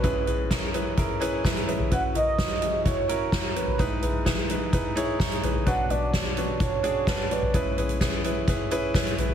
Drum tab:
HH |x-x-x-x-x-x-xxx-|x-x-x-x-x-x-x-x-|x-x-x-x-x-x-xxx-|x-x-x-x-x-x-x-x-|
SD |----o-------o---|----o-------o---|----o-------o---|----o-------o---|
FT |--o------------o|--o------------o|--o-----------oo|--o------------o|
BD |o---o---o---o---|o---o---o---o---|o---o---o---o---|o---o---o---o---|

HH |x-xxx-x-x-x-xxx-|
SD |----o-------o---|
FT |--o-----------oo|
BD |o---o---o---o---|